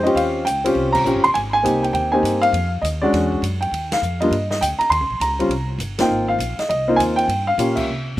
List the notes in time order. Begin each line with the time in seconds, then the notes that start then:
Already playing: F2
0.03 C4 C#4 F4 G4 D#5, ride
0.15 D#2 F5, ride
0.45 C#2 G5, hi-hat pedal, ride
0.65 C4 C#4 F4 G4, ride
0.75 C2
0.92 A#5, kick, crash
1.04 A#1 C4 C#4 F4 G4, hi-hat pedal
1.15 G1
1.24 D#1 C6, ride
1.34 G#1 G#5, ride
1.53 G#5
1.63 C2 A#3 C4 D#4 G4, hi-hat pedal, ride
1.83 G5, ride
1.93 D#2 G5, ride
2.12 A#3 C4 D#4 G4 G#5
2.23 G2, hi-hat pedal, ride
2.42 F5, ride
2.52 F2, ride
2.82 D#2 D#5, hi-hat pedal, ride
3.02 G#3 C#4 D4 F#4 D5
3.13 E2, snare, ride
3.32 kick
3.42 F#2, hi-hat pedal, ride
3.61 G5, ride
3.71 D#2, ride
3.92 F5, snare, ride
4.02 F2, hi-hat pedal
4.21 G3 A#3 D4 F4 D#5, ride
4.31 G2, ride
4.51 D#5, snare
4.61 D2 G5, hi-hat pedal, ride
4.79 A#5, muted upright bass stroke, ride
4.90 D#2 C6, ride
5.00 C#2
5.10 A#1
5.20 C#2 A#5, hi-hat pedal, ride
5.39 G3 C4 C#4 F4, ride
5.48 C2, ride
5.79 G1, hi-hat pedal, ride
5.98 A#3 C4 D#4 F4 G5, snare, ride
6.09 G#1
6.28 F5
6.39 A#1, hi-hat pedal, ride
6.59 D#5, muted upright bass stroke, snare, ride
6.69 C2 D#5, ride
6.88 A#3 C4 D#4 F4
6.96 D#2 G#5, hi-hat pedal, ride
7.16 G5, ride
7.28 G2, ride
7.47 F5
7.58 A#2 A#3 C#4 F4 G4, hi-hat pedal, ride
7.76 E5, kick, crash
7.88 C3